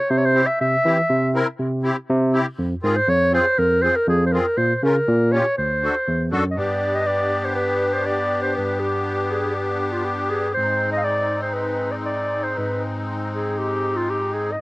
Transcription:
Already playing: C#5
0.10 C3 C5
0.18 C#5
0.25 C5
0.33 C4 E4 G4
0.46 E5
0.61 C3 E5
0.84 E3 C4 E4 G4
1.10 C3
1.34 C4 E4 A#4
1.59 C3
1.83 C4 E4 G4
2.09 C3
2.32 C4 E4 G4
2.59 F2
2.82 G#2 C4 F4 G#4 A#4
2.97 C5
3.08 F2 C#5
3.31 C4 F4 G#4 C5
3.58 F2 A#4
3.82 C4 F4 G#4 C5
3.96 A#4
4.08 F2 G#4
4.26 C5
4.33 C4 F4 G#4 A#4
4.57 A#2 C5
4.76 C5
4.83 C#3 C#4 F4 A#4
5.08 A#2
5.32 C#4 F4 G4 C#5
5.58 D2 C5
5.82 D4 F#4 A4
6.08 E2
6.31 F#2 D4 F#4 A4
6.51 D#5
6.55 G2 B3 D4 G4 D5
6.95 D#5
7.06 D5
7.45 C5
7.55 B4
7.94 C5
8.06 D5
8.42 C5
8.56 G2 B4
8.79 G4
9.31 G#4
9.55 G4
9.92 F4
10.05 G4
10.30 G#4
10.54 G#2 G#3 C4 D#4 C5
10.92 D#5
10.97 D#5 F5
11.04 D5
11.43 C5
11.54 B4
11.92 D5
12.05 D5
12.43 C5
12.58 G#2 B4
13.34 G#4
13.58 G4
13.96 F4
14.10 G4
14.33 G#4
14.52 D#5

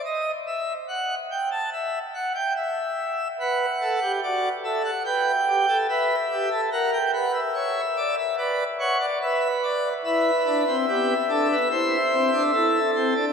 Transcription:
0.05 D#5
0.47 E5
0.89 F#5
1.31 G5
1.52 A5
1.73 E5
2.15 F#5
2.35 G5
2.56 E5
3.40 B4 F#5
3.81 A4
4.02 G4
4.23 F#4 D5
4.64 A4 E5
4.85 F#5
5.05 B4 G5
5.47 G4
5.68 A4
5.89 B4 E5
6.31 G4
6.51 A4
6.72 A#4 F#5
6.93 G5
7.14 B4 F#5
7.34 E5
7.55 C#5
7.97 D5
8.18 E5
8.38 B4 D5
8.80 C#5 F#5
9.00 D5
9.22 B4 E5
9.63 D5
10.05 E4 B4 E5
10.46 D4
10.67 C4
10.88 B3 G4
11.29 D4 A4
11.51 B4
11.71 E4 C5
12.13 C4
12.33 D4
12.53 E4 A4
12.96 C4
13.16 D4

